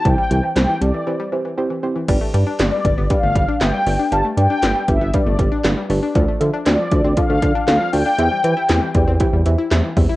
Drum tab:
CC |--------|x-------|--------|--------|
HH |xxxx----|xxxxxxxo|xxxxxxxo|xxxxxxxo|
CP |--x-----|--x---x-|--x---x-|--x---x-|
SD |--o-----|--o---o-|--o---o-|--o---o-|
BD |o-------|o--ooo--|---ooo--|o--ooo--|

CC |--------|
HH |xxxxxxxo|
CP |--x---x-|
SD |--o---o-|
BD |---oo--o|